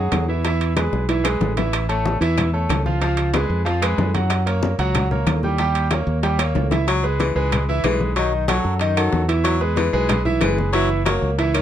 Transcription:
Already playing: grand piano F#3 F#4 G#4
0.12 fingered electric bass E2, high bongo, low bongo, high conga, high timbale, low timbale, claves
0.28 grand piano E3 E4 E5
0.45 grand piano E3 E4 E5, high bongo, high conga, high timbale
0.61 high bongo, high conga, high timbale
0.76 grand piano G#3 G#4 B4, high bongo, high conga, high timbale, low timbale, claves
0.93 fingered electric bass B1, high bongo, high conga
1.09 grand piano E3 E4 E5, high bongo, high conga, high timbale
1.24 grand piano G#3 G#4 B4, low bongo, high conga, high timbale, claves
1.40 fingered electric bass A1, low bongo, high conga, low timbale
1.57 grand piano E3 E4 E5, low bongo, high conga, high timbale
1.73 high bongo, high conga, high timbale, claves
1.89 grand piano A3 A4 C#5, high conga, high timbale
2.06 high bongo, high conga, low timbale
2.21 fingered electric bass E2, grand piano E3 E4 E5, high timbale
2.37 high bongo, high conga, low conga, high timbale, claves
2.53 grand piano A3 A4 C#5, high conga
2.69 fingered electric bass C#2, high bongo, low bongo, high conga, high timbale, low timbale, claves
2.86 grand piano F3 F4 F5, high conga
3.01 grand piano F3 F4 F5, high bongo, high conga, high timbale
3.17 high bongo, high conga, high timbale
3.33 grand piano G#3 G#4 B4, high bongo, high conga, high timbale, low timbale, claves
3.49 fingered electric bass F2, high conga
3.65 grand piano F3 F4 F5, high bongo, high timbale
3.82 grand piano G#3 G#4 B4, high bongo, high conga, high timbale, claves
3.98 fingered electric bass F#2, high bongo, low bongo, high conga, low timbale
4.14 grand piano F#3 F#4 F#5, high bongo, high conga, high timbale
4.30 high bongo, high conga, high timbale, claves
4.46 grand piano A#3 A#4 C#5, high conga, high timbale
4.62 high bongo, high conga, low timbale
4.79 fingered electric bass C#2, grand piano F#3 F#4 F#5, high conga, high timbale
4.95 high bongo, high conga, low conga, high timbale, claves
5.11 grand piano A#3 A#4 C#5, high conga, low conga
5.26 fingered electric bass D#2, high bongo, low bongo, high conga, high timbale, low timbale, claves
5.43 grand piano G3 G4 G5, high conga
5.58 grand piano G3 G4 G5, high bongo, high timbale
5.75 high bongo, high conga, high timbale
5.91 grand piano A#3 A#4 C#5, high bongo, high conga, high timbale, low timbale, claves
6.07 fingered electric bass D#2, high conga
6.23 grand piano G3 G4 G5, high bongo, high timbale
6.39 grand piano A#3 A#4 C#5, high bongo, high conga, high timbale, claves
6.55 fingered electric bass C#2, low bongo, high conga, low timbale
6.71 grand piano E3 E4 E5, low bongo, high conga, high timbale
6.88 baritone saxophone F#3, high bongo, high timbale, claves
7.03 grand piano G#3 G#4 B4, high conga
7.20 baritone saxophone E3, high bongo, high conga, high timbale
7.35 fingered electric bass C#2, grand piano G#3 G#4 B4
7.52 high bongo, high conga, low conga, high timbale, claves
7.69 grand piano E3 E4 E5, high conga
7.84 fingered electric bass B1, baritone saxophone E3, grand piano G#3 G#4 B4, high bongo, low bongo, high conga, high timbale, low timbale, claves
8.00 high conga
8.16 grand piano D#3 D#4 D#5, baritone saxophone F#3, high bongo, high timbale
8.32 high bongo, high conga
8.48 baritone saxophone F#3, grand piano F#3 F#4 A4, high bongo, high conga, high timbale, claves
8.64 fingered electric bass F#2, high bongo, high conga
8.79 grand piano D#3 D#4 D#5, high bongo, high conga, high timbale
8.96 baritone saxophone D#3, grand piano F#3 F#4 A4, high bongo, high conga, high timbale, claves
9.12 fingered electric bass E2, high bongo, low bongo, high conga
9.28 grand piano E3 E4 E5, high timbale
9.44 baritone saxophone F#3, high bongo, high conga, high timbale, claves
9.61 grand piano G#3 G#4 B4, high conga
9.76 baritone saxophone E3, high bongo, high conga, high timbale
9.93 fingered electric bass B1, grand piano G#3 G#4 B4
10.09 high bongo, high conga, low conga, high timbale, claves
10.25 grand piano E3 E4 E5, high conga, low conga
10.41 fingered electric bass F#1, baritone saxophone E3, grand piano G#3 G#4 B4, high bongo, low bongo, high conga, high timbale, low timbale, claves
10.58 high conga
10.73 grand piano E3 E4 E5, baritone saxophone F#3, high bongo, high conga, high timbale
10.90 high bongo, high conga
11.06 baritone saxophone F#3, grand piano A#3 A#4 C#5, high bongo, high conga, high timbale, claves
11.22 fingered electric bass C#2, high bongo, high conga
11.38 grand piano E3 E4 E5, high bongo, high conga, high timbale
11.54 baritone saxophone D#3, grand piano A#3 A#4 C#5, high bongo, high conga, high timbale, claves

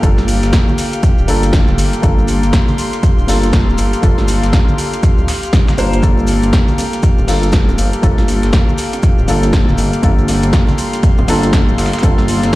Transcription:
Already playing: analog synth pad G4 F5
0.02 analog synth bass G1, felt piano A#3 D4 F4 A4, kick, closed hi-hat, maracas, shaker
0.18 snare, closed hi-hat, high conga, maracas
0.28 open hi-hat, shaker, maracas
0.43 analog synth bass G1, snare, closed hi-hat, maracas
0.53 kick, snare, closed hi-hat, maracas, shaker
0.68 low conga, maracas
0.78 open hi-hat, maracas, shaker
0.93 closed hi-hat, maracas
1.03 kick, closed hi-hat, shaker, maracas
1.18 analog synth bass D1, maracas
1.27 analog synth bass G1, felt piano A#3 D4 F4 A4, open hi-hat, shaker, maracas
1.43 closed hi-hat, maracas
1.53 kick, snare, closed hi-hat, high conga, shaker, maracas
1.68 analog synth bass D1, snare, low conga, maracas
1.78 analog synth bass G1, open hi-hat, shaker, maracas
1.93 closed hi-hat, maracas
2.02 analog synth bass G1, felt piano A#3 D4 F4 A4, analog synth pad C6, kick, closed hi-hat, maracas, shaker
2.18 high conga, maracas
2.28 open hi-hat, maracas, shaker
2.43 analog synth bass G1, closed hi-hat, maracas
2.53 kick, snare, closed hi-hat, maracas, shaker
2.68 closed hi-hat, low conga, maracas
2.77 open hi-hat, high conga, shaker, maracas
2.93 closed hi-hat, maracas
3.03 kick, closed hi-hat, shaker, maracas
3.18 analog synth bass D1, maracas
3.27 analog synth bass G1, felt piano A#3 D4 F4 A4, open hi-hat, maracas
3.43 closed hi-hat, maracas
3.53 kick, snare, closed hi-hat, high conga, maracas, shaker
3.68 analog synth bass D1, maracas
3.78 analog synth bass G1, open hi-hat, maracas, shaker
3.93 closed hi-hat, maracas
4.02 analog synth bass G1, felt piano A#3 D4 F4 A4, kick, closed hi-hat, maracas, shaker
4.18 snare, closed hi-hat, high conga, maracas
4.28 open hi-hat, maracas, shaker
4.43 analog synth bass G1, snare, closed hi-hat, maracas
4.53 kick, snare, closed hi-hat, shaker, maracas
4.68 low conga, maracas
4.78 open hi-hat, shaker, maracas
4.93 closed hi-hat, maracas
5.03 kick, closed hi-hat, maracas, shaker
5.18 analog synth bass D1, maracas
5.28 snare, open hi-hat, shaker, maracas
5.43 closed hi-hat, maracas
5.53 kick, snare, closed hi-hat, high conga, shaker, maracas
5.68 snare, low conga, maracas, shaker
5.78 analog synth bass G1, felt piano A#3 D4 F4 C5, open hi-hat, maracas
5.93 analog synth bass G1, closed hi-hat, maracas, shaker
6.02 analog synth bass G1, felt piano A#3 D4 F4 A4, kick, closed hi-hat, maracas, shaker
6.18 high conga, maracas
6.27 open hi-hat, high bongo, maracas, shaker
6.43 analog synth bass G1, closed hi-hat, maracas
6.53 kick, snare, closed hi-hat, maracas, shaker
6.68 closed hi-hat, low conga, maracas
6.78 open hi-hat, high bongo, high conga, shaker, maracas
6.93 closed hi-hat, maracas
7.03 kick, closed hi-hat, maracas, shaker
7.18 analog synth bass D1, high bongo, maracas
7.27 analog synth bass G1, felt piano A#3 D4 F4 A4, open hi-hat, maracas
7.43 closed hi-hat, maracas
7.52 kick, snare, closed hi-hat, high conga, maracas, shaker
7.68 analog synth bass D1, high bongo, maracas
7.78 analog synth bass G1, open hi-hat, shaker, maracas
7.93 closed hi-hat, maracas
8.02 analog synth bass G1, felt piano A#3 D4 F4 A4, kick, closed hi-hat, high bongo, shaker, maracas
8.18 snare, closed hi-hat, high conga, maracas
8.28 open hi-hat, shaker, maracas
8.43 analog synth bass G1, snare, closed hi-hat, maracas
8.53 kick, snare, closed hi-hat, high bongo, maracas, shaker
8.68 low conga, maracas
8.78 open hi-hat, maracas, shaker
8.93 closed hi-hat, high bongo, maracas
9.03 kick, closed hi-hat, maracas, shaker
9.18 analog synth bass D1, maracas
9.27 analog synth bass G1, felt piano A#3 D4 F4 A4, open hi-hat, maracas, shaker
9.43 closed hi-hat, high bongo, maracas
9.53 kick, snare, closed hi-hat, high conga, shaker, maracas
9.68 analog synth bass D1, snare, low conga, maracas
9.78 analog synth bass G1, open hi-hat, high bongo, maracas, shaker
9.93 closed hi-hat, maracas
10.02 analog synth bass G1, felt piano A#3 D4 F4 A4, analog synth pad C6, kick, closed hi-hat, maracas, shaker
10.18 high conga, maracas
10.28 open hi-hat, high bongo, maracas, shaker
10.42 analog synth bass G1, closed hi-hat, maracas
10.53 kick, snare, closed hi-hat, shaker, maracas
10.67 closed hi-hat, high bongo, low conga, maracas
10.78 open hi-hat, high conga, maracas, shaker
10.93 closed hi-hat, maracas
11.03 kick, closed hi-hat, maracas, shaker
11.18 analog synth bass D1, high bongo, maracas
11.27 analog synth bass G1, felt piano A#3 D4 F4 A4, snare, open hi-hat, maracas, shaker
11.43 closed hi-hat, maracas
11.53 kick, snare, closed hi-hat, high bongo, high conga, shaker, maracas
11.68 analog synth bass D1, maracas
11.78 analog synth bass G1, snare, open hi-hat, shaker, maracas
11.86 snare, shaker
11.93 snare, closed hi-hat, shaker, maracas
11.98 felt piano A#3, snare, shaker
12.03 analog synth bass G1, felt piano D4 F4 A4, kick, closed hi-hat, high bongo, shaker, maracas
12.18 snare, closed hi-hat, high conga, maracas
12.28 open hi-hat, shaker, maracas
12.43 analog synth bass G1, snare, closed hi-hat, high bongo, maracas

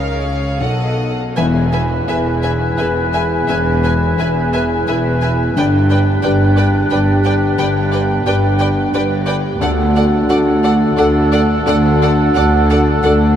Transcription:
Already playing: felt piano C#2 F4 D#5, double bass section C#2, cello section C#3, viola section A#4, violin section C#5 F5
0.23 viola section G#4, felt piano F5
0.61 felt piano B1, double bass section B1, cello section B2, viola section A4, violin section D#5 F#5
1.01 felt piano A4 D#5
1.36 double bass section E1, felt piano E1 E2, cello section E2, french horn section B3 G#4, clarinet E4, viola section B4, oboe B4, violin section E5 G#5, flute section G#5
1.73 viola section B4, violin section E5 G#5
2.08 double bass section E1, cello section E2, felt piano E4 G#4 B4, viola section B4, violin section E5 G#5
2.43 viola section B4, violin section E5 G#5
2.78 double bass section E1, cello section E2, felt piano E4 G#4 B4, viola section B4, violin section E5 G#5
3.13 viola section B4, violin section E5 G#5
3.48 double bass section E1, felt piano E1 E2, cello section E2, viola section B4, violin section E5 G#5
3.84 viola section B4, violin section E5 G#5
4.18 double bass section E1, cello section E2, felt piano E4 G#4 B4, viola section B4, violin section E5 G#5
4.53 viola section B4, violin section E5 G#5
4.88 double bass section E1, cello section E2, felt piano E4 G#4 B4, viola section B4, violin section E5 G#5
5.22 viola section B4, violin section E5 G#5
5.56 double bass section G1, felt piano G1 G2, cello section G2, french horn section B3 G4, clarinet D4, oboe B4, viola section B4, violin section D5 G5, flute section G5
5.90 viola section B4, violin section D5 G5
6.23 double bass section G1, cello section G2, felt piano D4 G4 B4, viola section B4, violin section D5 G5
6.57 viola section B4, violin section D5 G5
6.90 double bass section G1, cello section G2, felt piano D4 G4 B4, viola section B4, violin section D5 G5
7.24 viola section B4, violin section D5 G5
7.58 double bass section G1, felt piano G1 G2, cello section G2, viola section B4, violin section D5 G5
7.92 viola section B4, violin section D5 G5
8.26 double bass section G1, cello section G2, felt piano D4 G4 B4, viola section B4, violin section D5 G5
8.59 viola section B4, violin section D5 G5
8.94 double bass section G1, cello section G2, felt piano D4 G4 B4, viola section B4, violin section D5 G5
9.27 viola section B4, violin section D5 G5
9.60 cello section D2, double bass section D2, felt piano D2 D3, french horn section A3 F#4, clarinet D4, oboe A4, viola section A4, violin section D5 F#5, flute section F#5
9.95 viola section A4, violin section D5 F#5
10.29 cello section D2, double bass section D2, felt piano D4 F#4 A4, viola section A4, violin section D5 F#5
10.64 viola section A4, violin section D5 F#5
10.97 double bass section D2, cello section D2, felt piano D4 F#4 A4, viola section A4, violin section D5 F#5
11.32 viola section A4, violin section D5 F#5
11.66 cello section D2, double bass section D2, felt piano D2 D3, viola section A4, violin section D5 F#5
12.02 viola section A4, violin section D5 F#5
12.35 double bass section D2, cello section D2, felt piano D4 F#4 A4, viola section A4, violin section D5 F#5
12.70 viola section A4, violin section D5 F#5
13.03 double bass section D2, cello section D2, felt piano D4 F#4 A4, viola section A4, violin section D5 F#5

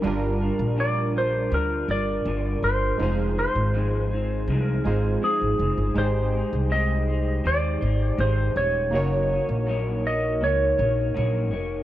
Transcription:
0.02 upright bass G1, synth keys G3 D4 F4, clean electric guitar G3 D4 F4 A#4
0.07 synth keys A#4
0.39 clean electric guitar D4 F4 A#4
0.59 upright bass A#1
0.76 clean electric guitar G3 D4 F4 A#4, electric slide guitar D5
1.14 clean electric guitar D4 F4 A#4
1.18 electric slide guitar C5
1.51 upright bass D2, clean electric guitar G3 D4 F4 A#4, electric slide guitar A#4
1.88 upright bass G1, clean electric guitar F4 A#4, electric slide guitar D5
1.92 clean electric guitar D4
2.25 upright bass G1, clean electric guitar G3 D4 F4 A#4
2.62 upright bass G1, clean electric guitar D4 F4 A#4, electric slide guitar C5
2.98 upright bass F1, clean electric guitar F3 C4 D#4, synth keys G#3 D#4 F4
3.02 clean electric guitar G#4, synth keys C5
3.36 clean electric guitar C4 D#4 G#4, electric slide guitar C5
3.55 upright bass G#1
3.74 clean electric guitar F3 C4 D#4 G#4
4.11 clean electric guitar D#4 G#4
4.15 clean electric guitar C4
4.47 upright bass C2, clean electric guitar F3 C4 D#4 G#4
4.64 electric slide guitar A#4
4.84 upright bass G#1, synth keys G#3 D#4 F4 C5, clean electric guitar D#4 G#4
4.88 clean electric guitar C4
5.22 clean electric guitar F3 C4 D#4 G#4, electric slide guitar G#4
5.42 upright bass G#1
5.59 upright bass F1, clean electric guitar D#4 G#4
5.63 clean electric guitar C4
5.78 upright bass G1
5.94 upright bass G#1, synth keys G#3 D#4 G4, clean electric guitar G#3 C4 D#4 G4, electric slide guitar C5
5.98 synth keys G#4, clean electric guitar C5
6.33 clean electric guitar G4 C5
6.37 clean electric guitar D#4
6.53 upright bass C2
6.70 clean electric guitar G#3 C4 D#4 G4 C5, electric slide guitar D#5
7.07 clean electric guitar D#4 G4 C5
7.44 upright bass D#2, clean electric guitar C4 D#4 G4 C5, electric slide guitar D5
7.81 upright bass G#1, clean electric guitar G4 C5
7.85 clean electric guitar D#4
8.18 upright bass G#1, clean electric guitar G#3 C4 D#4 G4 C5, electric slide guitar C5
8.56 upright bass D#1, clean electric guitar D#4 G4, electric slide guitar C#5
8.91 upright bass F#1, clean electric guitar F#3 A#3 D#4 A#4, synth keys A#3 D#4 F#4
8.95 clean electric guitar C#5, synth keys C#5
9.30 clean electric guitar A#4 C#5
9.34 clean electric guitar D#4
9.49 upright bass A#1
9.67 clean electric guitar F#3 A#3 D#4 A#4 C#5
10.04 clean electric guitar D#4 A#4 C#5, electric slide guitar D#5
10.41 upright bass C#2, clean electric guitar A#3 D#4 A#4 C#5, electric slide guitar C#5
10.78 upright bass A#1, clean electric guitar A#4 C#5
10.82 clean electric guitar D#4
11.14 upright bass A#1, clean electric guitar F#3 A#3 D#4 A#4 C#5
11.51 upright bass F1, clean electric guitar A#4 C#5
11.55 clean electric guitar D#4

